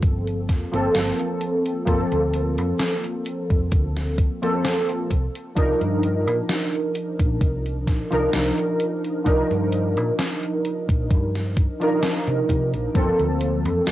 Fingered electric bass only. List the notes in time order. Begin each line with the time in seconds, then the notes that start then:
0.03 G1
0.49 F1
0.73 G1
0.94 G1
1.87 G1
2.12 D2
2.58 F2
3.50 F1
3.72 D2
5.10 C2
5.57 C2
5.81 G2
6.27 A#2
7.20 A#1
7.41 C2
7.87 A#1
8.13 C2
8.34 C2
9.26 C2
9.51 G2
9.97 A#2
10.89 A#1
11.11 G2
12.28 C3
12.49 C3
12.73 A#1
12.95 G1
13.19 D2
13.66 F2